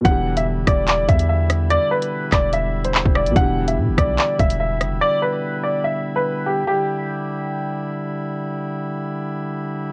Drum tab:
HH |x--x--x-x-xx--x-|x--x--x-x--x---x|x--x--x-x-xx--x-|----------------|
CP |--------x-------|------x-----x---|--------x-------|----------------|
SD |------r-------r-|------r-------r-|------r-------r-|----------------|
BD |o-----o---o-----|------o------o--|o-----o---o-----|----------------|

HH |----------------|----------------|
CP |----------------|----------------|
SD |----------------|----------------|
BD |----------------|----------------|